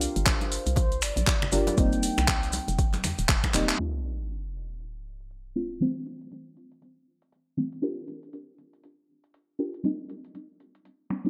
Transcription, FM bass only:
0, 0, Header, 1, 2, 480
1, 0, Start_track
1, 0, Tempo, 504202
1, 1693, Time_signature, 4, 2, 24, 8
1, 10756, End_track
2, 0, Start_track
2, 0, Title_t, "FM bass"
2, 0, Program_c, 0, 39
2, 154, Note_on_c, 0, 31, 99
2, 549, Note_off_c, 0, 31, 0
2, 633, Note_on_c, 0, 36, 87
2, 971, Note_on_c, 0, 31, 96
2, 986, Note_off_c, 0, 36, 0
2, 1061, Note_off_c, 0, 31, 0
2, 1113, Note_on_c, 0, 34, 93
2, 1175, Note_off_c, 0, 34, 0
2, 1450, Note_on_c, 0, 31, 102
2, 1618, Note_off_c, 0, 31, 0
2, 1693, Note_on_c, 0, 29, 100
2, 1989, Note_off_c, 0, 29, 0
2, 2074, Note_on_c, 0, 36, 102
2, 2469, Note_off_c, 0, 36, 0
2, 2554, Note_on_c, 0, 29, 89
2, 2892, Note_on_c, 0, 41, 93
2, 2906, Note_off_c, 0, 29, 0
2, 2981, Note_off_c, 0, 41, 0
2, 3033, Note_on_c, 0, 27, 94
2, 3095, Note_off_c, 0, 27, 0
2, 3132, Note_on_c, 0, 29, 82
2, 3221, Note_off_c, 0, 29, 0
2, 3372, Note_on_c, 0, 27, 88
2, 3538, Note_off_c, 0, 27, 0
2, 10756, End_track
0, 0, End_of_file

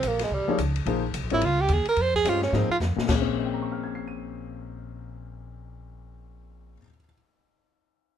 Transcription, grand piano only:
0, 0, Header, 1, 2, 480
1, 0, Start_track
1, 0, Tempo, 277393
1, 1483, Time_signature, 4, 2, 24, 8
1, 14153, End_track
2, 0, Start_track
2, 0, Title_t, "Grand piano"
2, 0, Program_c, 0, 0
2, 823, Note_on_c, 0, 53, 68
2, 833, Note_on_c, 0, 58, 63
2, 844, Note_on_c, 0, 63, 62
2, 845, Note_on_c, 0, 68, 60
2, 862, Note_on_c, 0, 73, 67
2, 988, Note_off_c, 0, 53, 0
2, 993, Note_off_c, 0, 58, 0
2, 998, Note_off_c, 0, 63, 0
2, 999, Note_off_c, 0, 68, 0
2, 1007, Note_off_c, 0, 73, 0
2, 1502, Note_on_c, 0, 53, 64
2, 1504, Note_on_c, 0, 58, 57
2, 1509, Note_on_c, 0, 63, 62
2, 1510, Note_on_c, 0, 68, 53
2, 1518, Note_on_c, 0, 72, 67
2, 1757, Note_off_c, 0, 53, 0
2, 1758, Note_off_c, 0, 58, 0
2, 1761, Note_off_c, 0, 63, 0
2, 1762, Note_off_c, 0, 68, 0
2, 1766, Note_off_c, 0, 72, 0
2, 2271, Note_on_c, 0, 55, 56
2, 2272, Note_on_c, 0, 60, 57
2, 2276, Note_on_c, 0, 65, 55
2, 2283, Note_on_c, 0, 73, 62
2, 2290, Note_on_c, 0, 70, 57
2, 2432, Note_off_c, 0, 55, 0
2, 2432, Note_off_c, 0, 60, 0
2, 2434, Note_off_c, 0, 65, 0
2, 2437, Note_off_c, 0, 73, 0
2, 2441, Note_off_c, 0, 70, 0
2, 3894, Note_on_c, 0, 56, 52
2, 3897, Note_on_c, 0, 67, 53
2, 3898, Note_on_c, 0, 61, 57
2, 3911, Note_on_c, 0, 72, 50
2, 3915, Note_on_c, 0, 75, 61
2, 4153, Note_off_c, 0, 56, 0
2, 4155, Note_off_c, 0, 67, 0
2, 4156, Note_off_c, 0, 61, 0
2, 4162, Note_off_c, 0, 72, 0
2, 4164, Note_off_c, 0, 75, 0
2, 4381, Note_on_c, 0, 53, 51
2, 4385, Note_on_c, 0, 58, 49
2, 4393, Note_on_c, 0, 63, 51
2, 4402, Note_on_c, 0, 68, 50
2, 4409, Note_on_c, 0, 75, 62
2, 4637, Note_off_c, 0, 53, 0
2, 4639, Note_off_c, 0, 58, 0
2, 4643, Note_off_c, 0, 63, 0
2, 4648, Note_off_c, 0, 68, 0
2, 4651, Note_off_c, 0, 75, 0
2, 5126, Note_on_c, 0, 46, 59
2, 5235, Note_on_c, 0, 58, 55
2, 5347, Note_on_c, 0, 61, 62
2, 5449, Note_on_c, 0, 68, 57
2, 5559, Note_on_c, 0, 60, 71
2, 5851, Note_on_c, 0, 75, 40
2, 5965, Note_on_c, 0, 79, 39
2, 6120, Note_on_c, 0, 82, 37
2, 6272, Note_on_c, 0, 85, 36
2, 6441, Note_on_c, 0, 89, 34
2, 6637, Note_on_c, 0, 92, 29
2, 6836, Note_on_c, 0, 96, 32
2, 7053, Note_on_c, 0, 99, 29
2, 11660, Note_off_c, 0, 46, 0
2, 11713, Note_off_c, 0, 75, 0
2, 11714, Note_off_c, 0, 58, 0
2, 11770, Note_off_c, 0, 61, 0
2, 11770, Note_off_c, 0, 79, 0
2, 11822, Note_off_c, 0, 68, 0
2, 11848, Note_off_c, 0, 82, 0
2, 11876, Note_off_c, 0, 60, 0
2, 11924, Note_off_c, 0, 85, 0
2, 12008, Note_off_c, 0, 89, 0
2, 12106, Note_off_c, 0, 92, 0
2, 12206, Note_off_c, 0, 96, 0
2, 12314, Note_off_c, 0, 99, 0
2, 14153, End_track
0, 0, End_of_file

